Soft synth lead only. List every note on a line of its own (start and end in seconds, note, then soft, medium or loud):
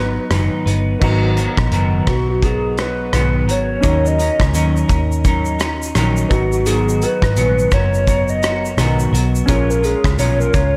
0.00 0.63 B4 medium
2.08 2.28 F#4 medium
2.30 2.45 F#4 medium
2.44 2.79 G#4 medium
2.80 3.52 B4 medium
3.51 4.09 C#5 loud
4.07 4.77 D#5 loud
6.32 6.51 F#4 medium
6.53 6.68 F#4 medium
6.66 7.04 G#4 medium
7.02 7.73 B4 loud
7.74 8.31 C#5 loud
8.30 9.00 D#5 medium
9.49 9.72 C#5 medium
9.70 9.86 A#4 medium
9.85 10.19 G#4 medium
10.19 10.39 C#5 medium
10.40 10.55 A#4 medium
10.54 10.77 C#5 medium